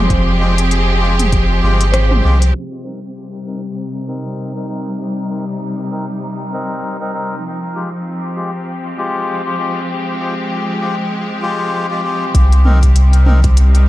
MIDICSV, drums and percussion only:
0, 0, Header, 1, 2, 480
1, 0, Start_track
1, 0, Tempo, 612245
1, 80, Time_signature, 4, 2, 24, 8
1, 10887, End_track
2, 0, Start_track
2, 0, Title_t, "Drums"
2, 78, Note_on_c, 9, 36, 102
2, 79, Note_on_c, 9, 42, 43
2, 157, Note_off_c, 9, 36, 0
2, 157, Note_off_c, 9, 42, 0
2, 457, Note_on_c, 9, 42, 53
2, 535, Note_off_c, 9, 42, 0
2, 559, Note_on_c, 9, 42, 47
2, 637, Note_off_c, 9, 42, 0
2, 936, Note_on_c, 9, 42, 57
2, 936, Note_on_c, 9, 45, 83
2, 1014, Note_off_c, 9, 42, 0
2, 1014, Note_off_c, 9, 45, 0
2, 1038, Note_on_c, 9, 42, 44
2, 1039, Note_on_c, 9, 36, 99
2, 1117, Note_off_c, 9, 36, 0
2, 1117, Note_off_c, 9, 42, 0
2, 1416, Note_on_c, 9, 42, 56
2, 1494, Note_off_c, 9, 42, 0
2, 1518, Note_on_c, 9, 37, 88
2, 1518, Note_on_c, 9, 42, 42
2, 1596, Note_off_c, 9, 37, 0
2, 1596, Note_off_c, 9, 42, 0
2, 1655, Note_on_c, 9, 45, 85
2, 1734, Note_off_c, 9, 45, 0
2, 1897, Note_on_c, 9, 42, 53
2, 1975, Note_off_c, 9, 42, 0
2, 9680, Note_on_c, 9, 36, 121
2, 9680, Note_on_c, 9, 42, 54
2, 9758, Note_off_c, 9, 36, 0
2, 9758, Note_off_c, 9, 42, 0
2, 9819, Note_on_c, 9, 42, 30
2, 9897, Note_off_c, 9, 42, 0
2, 9920, Note_on_c, 9, 45, 78
2, 9998, Note_off_c, 9, 45, 0
2, 10057, Note_on_c, 9, 42, 43
2, 10058, Note_on_c, 9, 36, 60
2, 10136, Note_off_c, 9, 42, 0
2, 10137, Note_off_c, 9, 36, 0
2, 10158, Note_on_c, 9, 42, 56
2, 10237, Note_off_c, 9, 42, 0
2, 10296, Note_on_c, 9, 42, 31
2, 10374, Note_off_c, 9, 42, 0
2, 10398, Note_on_c, 9, 45, 86
2, 10477, Note_off_c, 9, 45, 0
2, 10536, Note_on_c, 9, 42, 42
2, 10538, Note_on_c, 9, 36, 100
2, 10615, Note_off_c, 9, 42, 0
2, 10617, Note_off_c, 9, 36, 0
2, 10639, Note_on_c, 9, 42, 58
2, 10718, Note_off_c, 9, 42, 0
2, 10778, Note_on_c, 9, 42, 31
2, 10856, Note_off_c, 9, 42, 0
2, 10887, End_track
0, 0, End_of_file